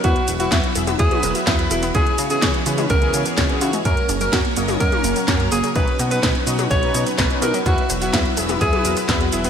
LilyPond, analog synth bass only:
\new Staff \with { instrumentName = "Analog synth bass" } { \clef bass \time 4/4 \key e \lydian \tempo 4 = 126 e,8 e,,8 e,8 e,,8 e,8 e,,8 e,8 e,,8 | cis,8 cis8 cis,8 cis8 cis,8 cis8 cis,8 cis8 | fis,8 fis,,8 fis,8 fis,,8 fis,8 fis,,8 fis,8 fis,,8 | b,,8 b,8 b,,8 b,8 b,,8 b,8 b,,8 b,8 |
e,8 e,,8 e,8 e,,8 e,8 e,,8 e,8 e,,8 | }